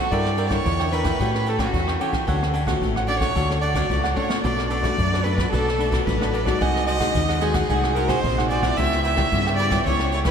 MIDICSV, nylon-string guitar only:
0, 0, Header, 1, 2, 480
1, 0, Start_track
1, 0, Tempo, 541516
1, 98, Time_signature, 4, 2, 24, 8
1, 9138, End_track
2, 0, Start_track
2, 0, Title_t, "Nylon-string guitar"
2, 0, Program_c, 0, 24
2, 99, Note_on_c, 0, 55, 53
2, 106, Note_on_c, 0, 62, 52
2, 108, Note_on_c, 0, 64, 59
2, 110, Note_on_c, 0, 70, 58
2, 325, Note_off_c, 0, 64, 0
2, 326, Note_off_c, 0, 62, 0
2, 329, Note_off_c, 0, 70, 0
2, 446, Note_on_c, 0, 62, 66
2, 452, Note_on_c, 0, 64, 61
2, 458, Note_on_c, 0, 70, 74
2, 556, Note_off_c, 0, 55, 0
2, 584, Note_on_c, 0, 50, 55
2, 773, Note_off_c, 0, 62, 0
2, 776, Note_off_c, 0, 64, 0
2, 779, Note_off_c, 0, 70, 0
2, 818, Note_on_c, 0, 62, 60
2, 819, Note_on_c, 0, 64, 53
2, 824, Note_on_c, 0, 70, 56
2, 1019, Note_off_c, 0, 64, 0
2, 1020, Note_off_c, 0, 62, 0
2, 1021, Note_off_c, 0, 70, 0
2, 1036, Note_off_c, 0, 50, 0
2, 1067, Note_on_c, 0, 45, 54
2, 1070, Note_on_c, 0, 55, 54
2, 1075, Note_on_c, 0, 61, 49
2, 1076, Note_on_c, 0, 66, 63
2, 1287, Note_off_c, 0, 55, 0
2, 1289, Note_off_c, 0, 61, 0
2, 1291, Note_off_c, 0, 66, 0
2, 1406, Note_on_c, 0, 55, 58
2, 1410, Note_on_c, 0, 66, 69
2, 1412, Note_on_c, 0, 61, 53
2, 1518, Note_off_c, 0, 45, 0
2, 1543, Note_on_c, 0, 52, 54
2, 1733, Note_off_c, 0, 55, 0
2, 1734, Note_off_c, 0, 61, 0
2, 1735, Note_off_c, 0, 66, 0
2, 1774, Note_on_c, 0, 55, 58
2, 1779, Note_on_c, 0, 61, 57
2, 1784, Note_on_c, 0, 66, 63
2, 1917, Note_off_c, 0, 55, 0
2, 1918, Note_off_c, 0, 61, 0
2, 1918, Note_off_c, 0, 66, 0
2, 1995, Note_off_c, 0, 52, 0
2, 2015, Note_on_c, 0, 50, 54
2, 2020, Note_on_c, 0, 57, 46
2, 2026, Note_on_c, 0, 61, 55
2, 2028, Note_on_c, 0, 66, 58
2, 2242, Note_off_c, 0, 57, 0
2, 2243, Note_off_c, 0, 61, 0
2, 2247, Note_off_c, 0, 66, 0
2, 2369, Note_on_c, 0, 57, 59
2, 2375, Note_on_c, 0, 61, 58
2, 2375, Note_on_c, 0, 66, 70
2, 2473, Note_off_c, 0, 50, 0
2, 2502, Note_on_c, 0, 45, 54
2, 2695, Note_off_c, 0, 57, 0
2, 2696, Note_off_c, 0, 61, 0
2, 2697, Note_off_c, 0, 66, 0
2, 2730, Note_on_c, 0, 57, 49
2, 2736, Note_on_c, 0, 61, 54
2, 2738, Note_on_c, 0, 66, 59
2, 2935, Note_off_c, 0, 57, 0
2, 2936, Note_off_c, 0, 61, 0
2, 2938, Note_off_c, 0, 66, 0
2, 2955, Note_off_c, 0, 45, 0
2, 2974, Note_on_c, 0, 50, 53
2, 2977, Note_on_c, 0, 57, 50
2, 2981, Note_on_c, 0, 61, 51
2, 2983, Note_on_c, 0, 66, 62
2, 3298, Note_off_c, 0, 57, 0
2, 3299, Note_off_c, 0, 61, 0
2, 3301, Note_off_c, 0, 66, 0
2, 3317, Note_on_c, 0, 57, 56
2, 3326, Note_on_c, 0, 66, 60
2, 3431, Note_off_c, 0, 50, 0
2, 3461, Note_on_c, 0, 45, 56
2, 3648, Note_off_c, 0, 57, 0
2, 3653, Note_off_c, 0, 66, 0
2, 3691, Note_on_c, 0, 57, 58
2, 3696, Note_on_c, 0, 61, 61
2, 3700, Note_on_c, 0, 66, 57
2, 3835, Note_off_c, 0, 57, 0
2, 3836, Note_off_c, 0, 61, 0
2, 3839, Note_off_c, 0, 66, 0
2, 3915, Note_off_c, 0, 45, 0
2, 3934, Note_on_c, 0, 57, 50
2, 3938, Note_on_c, 0, 47, 59
2, 3941, Note_on_c, 0, 62, 51
2, 3944, Note_on_c, 0, 66, 53
2, 4160, Note_off_c, 0, 57, 0
2, 4164, Note_off_c, 0, 62, 0
2, 4165, Note_off_c, 0, 66, 0
2, 4276, Note_on_c, 0, 57, 62
2, 4281, Note_on_c, 0, 62, 68
2, 4287, Note_on_c, 0, 66, 66
2, 4393, Note_off_c, 0, 47, 0
2, 4402, Note_on_c, 0, 54, 56
2, 4608, Note_off_c, 0, 57, 0
2, 4611, Note_off_c, 0, 62, 0
2, 4612, Note_off_c, 0, 66, 0
2, 4644, Note_on_c, 0, 57, 54
2, 4651, Note_on_c, 0, 62, 51
2, 4651, Note_on_c, 0, 66, 54
2, 4792, Note_off_c, 0, 57, 0
2, 4793, Note_off_c, 0, 62, 0
2, 4795, Note_off_c, 0, 66, 0
2, 4866, Note_off_c, 0, 54, 0
2, 4885, Note_on_c, 0, 47, 59
2, 4887, Note_on_c, 0, 57, 54
2, 4890, Note_on_c, 0, 62, 51
2, 4893, Note_on_c, 0, 66, 62
2, 5032, Note_off_c, 0, 57, 0
2, 5032, Note_off_c, 0, 62, 0
2, 5036, Note_off_c, 0, 66, 0
2, 5126, Note_on_c, 0, 57, 54
2, 5131, Note_on_c, 0, 62, 50
2, 5134, Note_on_c, 0, 66, 70
2, 5348, Note_off_c, 0, 47, 0
2, 5374, Note_on_c, 0, 54, 59
2, 5453, Note_off_c, 0, 57, 0
2, 5456, Note_off_c, 0, 62, 0
2, 5457, Note_off_c, 0, 66, 0
2, 5496, Note_on_c, 0, 57, 55
2, 5500, Note_on_c, 0, 62, 62
2, 5504, Note_on_c, 0, 66, 66
2, 5698, Note_off_c, 0, 57, 0
2, 5701, Note_off_c, 0, 62, 0
2, 5702, Note_off_c, 0, 66, 0
2, 5728, Note_on_c, 0, 56, 54
2, 5731, Note_on_c, 0, 63, 55
2, 5735, Note_on_c, 0, 66, 66
2, 5832, Note_off_c, 0, 54, 0
2, 5867, Note_on_c, 0, 48, 56
2, 6175, Note_off_c, 0, 56, 0
2, 6176, Note_off_c, 0, 63, 0
2, 6179, Note_off_c, 0, 66, 0
2, 6213, Note_on_c, 0, 56, 58
2, 6217, Note_on_c, 0, 63, 62
2, 6223, Note_on_c, 0, 66, 70
2, 6319, Note_off_c, 0, 48, 0
2, 6342, Note_on_c, 0, 48, 57
2, 6538, Note_off_c, 0, 56, 0
2, 6540, Note_off_c, 0, 63, 0
2, 6543, Note_off_c, 0, 66, 0
2, 6570, Note_on_c, 0, 56, 53
2, 6576, Note_on_c, 0, 63, 53
2, 6580, Note_on_c, 0, 66, 65
2, 6777, Note_off_c, 0, 56, 0
2, 6778, Note_off_c, 0, 63, 0
2, 6781, Note_off_c, 0, 66, 0
2, 6797, Note_off_c, 0, 48, 0
2, 6829, Note_on_c, 0, 56, 51
2, 6831, Note_on_c, 0, 48, 50
2, 6837, Note_on_c, 0, 63, 49
2, 6840, Note_on_c, 0, 66, 60
2, 7026, Note_off_c, 0, 56, 0
2, 7029, Note_off_c, 0, 63, 0
2, 7031, Note_off_c, 0, 66, 0
2, 7062, Note_on_c, 0, 56, 58
2, 7070, Note_on_c, 0, 63, 54
2, 7072, Note_on_c, 0, 66, 59
2, 7283, Note_off_c, 0, 48, 0
2, 7286, Note_off_c, 0, 56, 0
2, 7291, Note_off_c, 0, 63, 0
2, 7291, Note_off_c, 0, 66, 0
2, 7316, Note_on_c, 0, 48, 53
2, 7435, Note_on_c, 0, 56, 60
2, 7440, Note_on_c, 0, 63, 55
2, 7444, Note_on_c, 0, 66, 63
2, 7630, Note_off_c, 0, 56, 0
2, 7632, Note_off_c, 0, 63, 0
2, 7633, Note_off_c, 0, 66, 0
2, 7661, Note_on_c, 0, 55, 63
2, 7668, Note_on_c, 0, 59, 60
2, 7675, Note_on_c, 0, 64, 65
2, 7764, Note_off_c, 0, 48, 0
2, 7804, Note_on_c, 0, 49, 57
2, 8103, Note_off_c, 0, 55, 0
2, 8106, Note_off_c, 0, 59, 0
2, 8110, Note_off_c, 0, 64, 0
2, 8139, Note_on_c, 0, 55, 65
2, 8144, Note_on_c, 0, 59, 68
2, 8144, Note_on_c, 0, 64, 68
2, 8249, Note_off_c, 0, 49, 0
2, 8281, Note_on_c, 0, 49, 54
2, 8342, Note_off_c, 0, 55, 0
2, 8343, Note_off_c, 0, 59, 0
2, 8344, Note_off_c, 0, 64, 0
2, 8409, Note_on_c, 0, 55, 60
2, 8413, Note_on_c, 0, 59, 52
2, 8416, Note_on_c, 0, 64, 60
2, 8597, Note_off_c, 0, 55, 0
2, 8599, Note_off_c, 0, 59, 0
2, 8601, Note_off_c, 0, 64, 0
2, 8614, Note_on_c, 0, 55, 53
2, 8618, Note_on_c, 0, 59, 62
2, 8623, Note_on_c, 0, 64, 67
2, 8700, Note_off_c, 0, 55, 0
2, 8701, Note_off_c, 0, 59, 0
2, 8704, Note_off_c, 0, 64, 0
2, 8728, Note_off_c, 0, 49, 0
2, 8756, Note_on_c, 0, 49, 53
2, 8761, Note_on_c, 0, 55, 59
2, 8765, Note_on_c, 0, 59, 50
2, 8771, Note_on_c, 0, 64, 59
2, 9072, Note_off_c, 0, 55, 0
2, 9073, Note_off_c, 0, 59, 0
2, 9078, Note_off_c, 0, 64, 0
2, 9093, Note_on_c, 0, 55, 51
2, 9097, Note_on_c, 0, 59, 64
2, 9104, Note_on_c, 0, 64, 64
2, 9138, Note_off_c, 0, 49, 0
2, 9138, Note_off_c, 0, 55, 0
2, 9138, Note_off_c, 0, 59, 0
2, 9138, Note_off_c, 0, 64, 0
2, 9138, End_track
0, 0, End_of_file